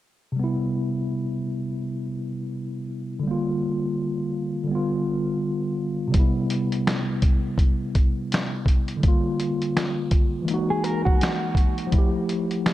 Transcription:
0.32 C3
0.36 G3 B3
0.44 E4
3.19 D3 G3
3.28 A#3 F4
4.64 D3 G3
4.71 B3 F4
6.08 C3
6.12 G3, kick, closed hi-hat
6.16 B3 E4
6.50 closed hi-hat
6.72 closed hi-hat
6.87 finger snap, snare, closed hi-hat
7.22 kick, closed hi-hat
7.58 kick, closed hi-hat
7.95 kick, closed hi-hat
8.32 finger snap, snare, closed hi-hat
8.66 kick, closed hi-hat
8.88 closed hi-hat
8.97 D3 G3
9.03 A#3, kick, closed hi-hat
9.08 F4
9.40 closed hi-hat
9.62 closed hi-hat
9.77 finger snap, snare, closed hi-hat
10.11 kick, closed hi-hat
10.42 E3 G#3
10.48 A#3 D#4, closed hi-hat
10.54 F#4
10.70 G#4
10.84 A#4, closed hi-hat
11.05 F#4, kick
11.21 finger snap, snare, closed hi-hat
11.55 kick, closed hi-hat
11.78 closed hi-hat
11.87 F3 A3
11.92 E4, kick, closed hi-hat
11.98 G4
12.29 closed hi-hat
12.51 closed hi-hat
12.66 finger snap, snare, closed hi-hat

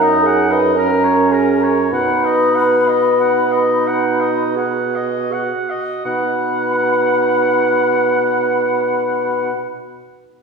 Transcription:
Already playing: F#2 D#4 A#4 A#5
0.03 D#5
0.24 G#4 F#5 G#5
0.50 B4 D#5 B5
0.75 C#4 A#4 A#5
1.04 C#5
1.31 G#4 A#4 G#5
1.60 A#4 C#5 A#5
1.90 B2 D#4 B4 F#5 B5
2.25 D#5
2.55 F#5
2.88 D#5
3.20 D#4 F#5
3.52 D#5
3.87 F#5
4.20 D#5
4.56 G#4 F#5
4.96 D#5
5.31 F#4 F#5
5.70 D#5
6.05 B2 D#4 B4 F#5 B5

